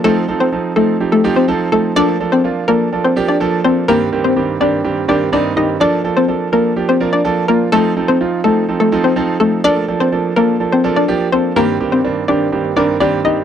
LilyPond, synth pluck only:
\new Staff \with { instrumentName = "Synth pluck" } { \time 4/4 \key bes \major \tempo 4 = 125 <a a'>16 r8 <c' c''>16 r8 <a a'>8 r16 <a a'>16 r16 <c' c''>16 r8 <a a'>16 r16 | <d' d''>16 r8 <c' c''>16 r8 <bes bes'>8 r16 <c' c''>16 r16 <d' d''>16 r8 <c' c''>16 r16 | <bes bes'>16 r8 <c' c''>16 r8 <d' d''>8. r16 <d' d''>16 r16 <d' d''>16 r16 <ees' ees''>16 r16 | <d' d''>16 r8 <c' c''>16 r8 <bes bes'>8 r16 <c' c''>16 r16 <d' d''>16 r8 <bes bes'>16 r16 |
<a a'>16 r8 <c' c''>16 r8 <a a'>8 r16 <a a'>16 r16 <c' c''>16 r8 <a a'>16 r16 | <d' d''>16 r8 <c' c''>16 r8 <bes bes'>8 r16 <c' c''>16 r16 <d' d''>16 r8 <c' c''>16 r16 | <bes bes'>16 r8 <c' c''>16 r8 <d' d''>8. r16 <d' d''>16 r16 <d' d''>16 r16 <ees' ees''>16 r16 | }